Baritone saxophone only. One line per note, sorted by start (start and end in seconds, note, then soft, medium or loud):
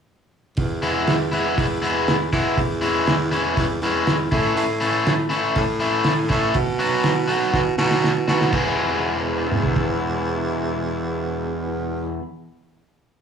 0.57 1.53 E2 medium
1.58 2.29 E2 medium
2.32 2.56 E3 medium
2.58 3.53 E2 medium
3.58 3.81 E2 medium
3.81 4.28 E2 medium
4.32 4.55 A2 medium
4.56 5.25 A2 medium
5.56 6.26 A2 medium
6.31 6.53 A2 medium
6.55 7.49 B2 medium
7.54 7.77 B2 medium
7.78 8.24 B2 medium
8.28 8.51 B2 medium
8.53 12.16 E2 medium